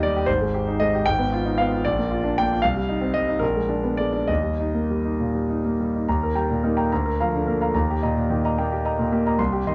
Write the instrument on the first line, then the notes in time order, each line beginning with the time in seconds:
grand piano
Already playing: D#2 G3 D#4 G4 D#5
0.03 G3 D5
0.16 G4
0.26 G#1 C5
0.41 G#3
0.54 G4
0.67 D#4
0.80 G#3 D#5
0.95 G4
1.06 G#1 G5
1.18 B3
1.33 F4
1.45 D#4
1.58 B3 F5
1.72 F4
1.85 A#1 D5
1.98 A#3
2.11 F4
2.24 D4
2.38 A#3 G5
2.52 F4
2.62 C2 F5
2.77 G3
2.89 D#4
3.01 C4
3.14 G3 D#5
3.29 D#4
3.39 A#1 A#4
3.56 G#3
3.69 D4
3.84 B3
3.97 G#3 D5
4.13 D4
4.28 D#2 D#5
4.43 G3
4.59 D#4
4.75 A#3
4.90 G3
5.05 D#4
5.20 A#2
5.35 G3
5.50 D#4
5.64 A#3
5.80 G3
5.95 D#4
6.08 D#2 A#5
6.23 A#4
6.35 G3 G5 A#5
6.50 A#2
6.64 A#3 D#4 A#4
6.77 G5 A#5
6.92 D2 A#5
7.06 A#4
7.20 F3 F5 A#5
7.35 D3
7.47 A#3 A#4
7.61 F5 A#5
7.74 D#2 A#5
7.90 G4
8.03 A#2 D#5 A#5
8.17 A#2
8.30 D#3 G4
8.45 D#5 A#5
8.59 A#3 G5
8.72 G4
8.85 D#5 A#5
8.99 A#2
9.12 A#3 G4
9.26 D#5 A#5
9.38 C2 C6
9.53 G4
9.67 D#3 D#5 C6